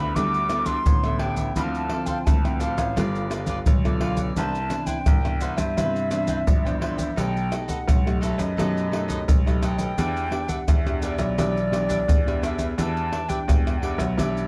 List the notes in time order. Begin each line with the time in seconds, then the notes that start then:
Already playing: D2 D3 B3 E4 G4 A4 B4 E5 B5
0.15 D2 G3 B3 D4 E4 G4 A4 B4 E5 D6, pandeiro, tamborim, maracas, surdo
0.34 pandeiro, maracas
0.49 B3 D4 E4 G4 A4 B4 E5, pandeiro, tamborim, maracas
0.66 D4 G4 B4 E5 C6, pandeiro, maracas, surdo
0.86 A1 D3, pandeiro, maracas, surdo
1.04 B3 E4 G4 A4 B4 E5, pandeiro, tamborim, maracas, surdo
1.19 D4 G4 B4 E5 G5, pandeiro, tamborim
1.37 G4 B4 E5, pandeiro, maracas, surdo
1.56 D2 D3 F3 C4 D4 E4 A4 C5 F5 B5, pandeiro, maracas, surdo
1.75 A5, pandeiro, maracas
1.90 F3 C4 D4 E4 A4 C5 F5, pandeiro, tamborim
2.06 D4 A4 C5 F5 G5, pandeiro, maracas, surdo
2.25 D2 A2 A5, pandeiro, tamborim, maracas, surdo
2.44 F3 C4 E4 G5, pandeiro, tamborim, maracas
2.60 D4 A4 C5 F5, pandeiro, maracas
2.77 A1 A4 C5 F5, pandeiro, tamborim, maracas, surdo
2.96 G1 G3 B3 F4 G4 A4 B4 D5, pandeiro, tamborim, maracas, surdo
3.15 pandeiro, maracas
3.30 B3 F4 G4 A4 B4 D5, pandeiro, tamborim, maracas
3.47 F4 G4 B4 D5, pandeiro, maracas, surdo
3.66 B1 D3, pandeiro, maracas, surdo
3.85 B3 F4 G4 A4 B4 D5, pandeiro, tamborim, maracas, surdo
4.00 F4 G4 B4 D5 F5, pandeiro, tamborim
4.17 G4 B4 D5, pandeiro, maracas, surdo
4.36 C2 C3 E3 B3 D4 E4 B4 C5 G5 A5, pandeiro, maracas, surdo
4.55 pandeiro, maracas
4.70 E3 B3 D4 E4 B4 C5 G5, pandeiro, tamborim, maracas
4.87 E4 B4 C5 G5, pandeiro, maracas, surdo
5.06 C2 G2, pandeiro, tamborim, maracas, surdo
5.25 E3 B3 D4, pandeiro, tamborim, maracas
5.41 E4 B4 C5 F#5 G5, pandeiro, maracas
5.57 G2 B4 C5 E5 G5, pandeiro, tamborim, maracas, surdo
5.77 G2 C3 E3 B3 D4 E4 B4 C5 G5, pandeiro, tamborim, maracas, surdo
5.96 pandeiro, maracas
6.11 E3 B3 D4 E4 B4 C5 G5, pandeiro, tamborim, maracas
6.27 E4 B4 C5 G5, pandeiro, maracas, surdo
6.47 A#1 G2, pandeiro, maracas, surdo
6.65 E3 B3 D4 B4 C5 G5, pandeiro, tamborim, maracas, surdo
6.81 E4 B4 C5 E5 G5, pandeiro, tamborim
6.98 B4 C5 G5, pandeiro, maracas, surdo
7.16 B1 B2 A3 D#4 G4 A4 B4 D#5 G5, pandeiro, maracas, surdo
7.37 pandeiro, maracas
7.51 A3 D#4 G4 A4 B4 D#5, pandeiro, tamborim, maracas
7.68 D#4 A4 B4 D#5 F#5, pandeiro, maracas, surdo
7.88 B1 F#2, pandeiro, tamborim, maracas, surdo
8.06 A3 D#4 G4, pandeiro, tamborim, maracas
8.21 D#4 A4 B4 D#5 E5, pandeiro, maracas
8.37 F#2 A4 B4 D#5, pandeiro, tamborim, maracas, surdo
8.57 F#2 B2 A3 D#4 G4 A4 B4 D#5, pandeiro, tamborim, maracas, surdo
8.77 pandeiro, maracas
8.91 A3 D#4 G4 A4 B4 D#5, pandeiro, tamborim
9.08 D#4 A4 B4 D#5, pandeiro, maracas, surdo
9.28 B1 F#2, pandeiro, maracas, surdo
9.46 A3 D#4 G4 A4 B4 D#5, pandeiro, tamborim, maracas, surdo
9.62 D#4 A4 B4 D#5 G5, pandeiro, tamborim, maracas
9.78 A4 B4 D#5, pandeiro, maracas, surdo
9.97 E2 E3 B3 D4 G4 B4 E5, pandeiro, maracas, surdo
10.17 pandeiro, maracas
10.31 B3 D4 G4 B4 E5, pandeiro, tamborim
10.48 D4 G4 B4 E5 F#5, pandeiro, maracas, surdo
10.68 E2 B2 E5, pandeiro, tamborim, maracas, surdo
10.86 B3 D4 G4, pandeiro, tamborim, maracas
11.02 D4 G4 B4 D5 E5, pandeiro, maracas
11.18 B1 G4 B4 E5, pandeiro, tamborim, maracas, surdo
11.38 B1 E3 B3 D4 G4 B4 E5, pandeiro, tamborim, maracas, surdo
11.57 pandeiro, maracas
11.71 B3 D4 G4 B4 E5, pandeiro, tamborim, maracas
11.89 D4 G4 B4 E5, pandeiro, maracas, surdo
12.08 E2 B2, pandeiro, maracas, surdo
12.26 B3 D4 G4 B4 E5, pandeiro, tamborim, maracas
12.42 D4 G4 B4 E5, pandeiro, tamborim, maracas
12.59 G4 B4 E5, pandeiro, maracas, surdo
12.78 E2 E3 B3 D4 G4 B4 E5 A5, pandeiro, maracas, surdo
12.97 pandeiro, maracas
13.12 D4 G4 B4 E5, pandeiro, tamborim
13.28 B3 D4 G4 B4 E5 G5, pandeiro, maracas, surdo
13.48 E2 B2, pandeiro, tamborim, maracas, surdo
13.67 pandeiro, tamborim, maracas
13.76 G5
13.82 B3 D4 G4 B4 E5 F#5, pandeiro
13.98 B1 G4 B4 E5, pandeiro, tamborim, maracas, surdo
14.17 B1 E3 B3 D4 G4 B4 E5, pandeiro, tamborim, maracas, surdo
14.37 pandeiro, maracas